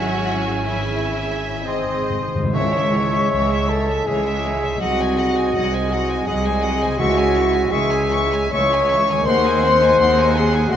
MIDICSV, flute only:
0, 0, Header, 1, 2, 480
1, 0, Start_track
1, 0, Key_signature, 4, "minor"
1, 0, Tempo, 924499
1, 348, Tempo, 988468
1, 828, Tempo, 882353
1, 1308, Tempo, 764331
1, 1309, Time_signature, 3, 2, 24, 8
1, 2268, Tempo, 729040
1, 4668, Tempo, 807537
1, 5148, Tempo, 732601
1, 6617, End_track
2, 0, Start_track
2, 0, Title_t, "Flute"
2, 0, Program_c, 0, 73
2, 0, Note_on_c, 0, 78, 55
2, 176, Note_off_c, 0, 78, 0
2, 352, Note_on_c, 0, 76, 42
2, 811, Note_off_c, 0, 76, 0
2, 833, Note_on_c, 0, 84, 60
2, 1308, Note_on_c, 0, 85, 78
2, 1317, Note_off_c, 0, 84, 0
2, 2030, Note_on_c, 0, 81, 67
2, 2039, Note_off_c, 0, 85, 0
2, 2264, Note_on_c, 0, 80, 58
2, 2274, Note_off_c, 0, 81, 0
2, 2750, Note_off_c, 0, 80, 0
2, 2754, Note_on_c, 0, 78, 69
2, 3290, Note_off_c, 0, 78, 0
2, 3479, Note_on_c, 0, 78, 66
2, 3711, Note_on_c, 0, 80, 73
2, 3721, Note_off_c, 0, 78, 0
2, 4196, Note_on_c, 0, 78, 73
2, 4206, Note_off_c, 0, 80, 0
2, 4665, Note_on_c, 0, 80, 74
2, 4674, Note_off_c, 0, 78, 0
2, 4976, Note_off_c, 0, 80, 0
2, 5146, Note_on_c, 0, 85, 86
2, 5625, Note_on_c, 0, 84, 83
2, 5635, Note_off_c, 0, 85, 0
2, 6351, Note_on_c, 0, 80, 83
2, 6361, Note_off_c, 0, 84, 0
2, 6584, Note_on_c, 0, 78, 79
2, 6594, Note_off_c, 0, 80, 0
2, 6617, Note_off_c, 0, 78, 0
2, 6617, End_track
0, 0, End_of_file